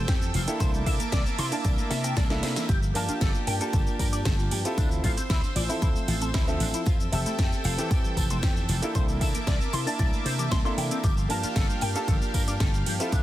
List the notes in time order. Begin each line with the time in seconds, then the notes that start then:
Already playing: E3 C4 G4 A4 G5 E6
0.08 F2 E3 G4, kick, snare, closed hi-hat, tambourine, cabasa
0.21 C4, tambourine, cabasa
0.34 F1 E3 F4, open hi-hat, tambourine
0.47 A#3 D4 E4 G4 A4, closed hi-hat, cabasa
0.60 C2 E3 A#3 C5 E5 A5 D6, kick, closed hi-hat, tambourine, cabasa
0.74 A3, tambourine, cabasa
0.86 C3 E3 A#3 D4 E4 A4 E5, kick, open hi-hat, tambourine
0.99 A#3 A#4, muted slap bass stroke, closed hi-hat, tambourine, cabasa
1.12 C2 E3 D5, kick, snare, closed hi-hat, tambourine, cabasa
1.26 C4, tambourine, cabasa
1.38 C3 E4 C6, open hi-hat, tambourine
1.51 A#3 D4 E4 D5 A5, open hi-hat, tambourine, cabasa
1.64 C2 E3 D5, kick, closed hi-hat, tambourine, cabasa
1.78 A3, tambourine, cabasa
1.90 C3 A#3 E5, snare, open hi-hat, tambourine
2.04 C4 G5, closed hi-hat, tambourine, cabasa
2.17 C2 A3 D5, kick, snare, closed hi-hat, tambourine, cabasa
2.30 A3 A#3 D4 E4 A4, snare, tambourine, cabasa
2.43 C3 C4 C5, snare, open hi-hat, tambourine
2.56 E3 E5, snare, closed hi-hat, tambourine, cabasa
2.69 G1 F3 G4, kick, closed hi-hat, tambourine, cabasa
2.83 F3, tambourine, cabasa
2.94 G2 F3 A#3 D4 F4 A#4 A5, open hi-hat, tambourine
3.09 D4 F4, muted slap bass stroke, closed hi-hat, cabasa
3.21 G1 F3 A4, kick, snare, closed hi-hat, tambourine, cabasa
3.35 F4, tambourine, cabasa
3.47 G2 A#4 G5, open hi-hat, tambourine
3.60 A#3 D4 F4 G4 A4 A5, closed hi-hat, tambourine, cabasa
3.73 G1 F3 A4, kick, closed hi-hat, tambourine, cabasa
3.87 A#3, tambourine, cabasa
3.99 G2 F3 A#4, kick, open hi-hat, tambourine
4.13 D4 D5, closed hi-hat, tambourine, cabasa
4.25 G1 F3 A4, kick, snare, closed hi-hat, tambourine, cabasa
4.39 F4, tambourine, cabasa
4.51 G2 F3 G4, open hi-hat, tambourine
4.65 C4 E4 F4 G4 A4, closed hi-hat, tambourine, cabasa
4.78 D2 E3 D4 C5 E6, kick, closed hi-hat, tambourine, cabasa
4.91 E3, tambourine, cabasa
5.03 A1 E3 C4 E4 F4 A4, kick, open hi-hat, tambourine
5.17 C4, muted slap bass stroke, closed hi-hat, tambourine, cabasa
5.30 D2 E3 E4, kick, snare, closed hi-hat, tambourine, cabasa
5.43 D4, tambourine, cabasa
5.56 A1 F4 D5, open hi-hat, tambourine
5.69 F3 C4 E4 A4 E5, open hi-hat, tambourine, cabasa
5.82 D2 E3 E4, kick, closed hi-hat, tambourine, cabasa
5.96 A3, tambourine, cabasa
6.08 A1 E3 F4, open hi-hat, tambourine
6.22 C4 A4, closed hi-hat, tambourine, cabasa
6.34 D2 E3 E4, kick, snare, closed hi-hat, tambourine, cabasa
6.47 F3 C4 D4 A4 E5, tambourine, cabasa
6.60 A1 E3 D4, open hi-hat, tambourine
6.74 E4, closed hi-hat, tambourine, cabasa
6.86 F2 E3 F4 A4 G5 E6, kick, closed hi-hat, tambourine, cabasa
7.00 E3, tambourine, cabasa
7.12 F1 E3 C4 G4 A4 E5, open hi-hat, tambourine
7.26 A3 E4, muted slap bass stroke, closed hi-hat, tambourine, cabasa
7.39 F2 E3 G4, kick, snare, closed hi-hat, tambourine, cabasa
7.52 C4, tambourine, cabasa
7.64 F1 F4 F5, open hi-hat, tambourine
7.77 E3 C4 E4 G4 A4, closed hi-hat, tambourine, cabasa
7.91 F2 E3 G4, kick, closed hi-hat, tambourine, cabasa
8.04 G3, tambourine, cabasa
8.17 F1 E3 A4, kick, open hi-hat, tambourine
8.30 A3 C5, closed hi-hat, tambourine, cabasa
8.43 F2 E3 G4, kick, snare, closed hi-hat, tambourine, cabasa
8.56 C4, tambourine, cabasa
8.69 F1 E3 F4, open hi-hat, tambourine
8.82 A#3 D4 E4 G4 A4, closed hi-hat, tambourine, cabasa
8.95 C2 E3 A#3 C5 E5 A5 D6, kick, closed hi-hat, tambourine, cabasa
9.08 E3, tambourine, cabasa
9.21 C3 E3 A#3 D4 E4 A4 E5, kick, open hi-hat, tambourine
9.34 A#3 A#4, muted slap bass stroke, closed hi-hat, tambourine, cabasa
9.47 C2 E3 D5, kick, snare, closed hi-hat, tambourine, cabasa
9.60 C4, tambourine, cabasa
9.73 C3 E4 C6, open hi-hat, tambourine
9.86 A#3 D4 E4 D5 A5, open hi-hat, tambourine, cabasa
9.99 C2 E3 D5, kick, closed hi-hat, tambourine, cabasa
10.13 A3, tambourine, cabasa
10.25 C3 D4 C5, open hi-hat, tambourine
10.39 E3 G4, closed hi-hat, cabasa
10.51 C2 A#3 C6, kick, snare, closed hi-hat, tambourine, cabasa
10.64 A#3 C4 D4 E4 A4 C6, tambourine, cabasa
10.77 C3 E3 G5, open hi-hat, tambourine
10.91 C4, closed hi-hat, tambourine, cabasa
11.04 G1 F3 G4 F5, kick, closed hi-hat, tambourine, cabasa
11.17 F3, tambourine, cabasa
11.28 G2 F3 A#3 D4 F4 A#4 A5, open hi-hat, tambourine
11.43 D4 F4, muted slap bass stroke, closed hi-hat, tambourine, cabasa
11.56 G1 F3 A4, kick, snare, closed hi-hat, tambourine, cabasa
11.70 G3, tambourine, cabasa
11.81 G2 A#4 G5, open hi-hat, tambourine
11.94 A#3 D4 F4 G4 A4 A5, closed hi-hat, tambourine, cabasa
12.08 G1 F3 A4, kick, closed hi-hat, tambourine, cabasa
12.22 A#3, tambourine, cabasa
12.34 G2 F3 A#4, kick, open hi-hat, tambourine
12.48 D4 D5, closed hi-hat, tambourine, cabasa
12.60 G1 F3 A4, kick, snare, closed hi-hat, tambourine, cabasa
12.74 F4, tambourine, cabasa
12.86 G2 F3 G4, open hi-hat, tambourine
12.99 C4 E4 F4 G4 A4, closed hi-hat, tambourine, cabasa
13.12 D2 E3 D4 C5 E6, kick, closed hi-hat, tambourine, cabasa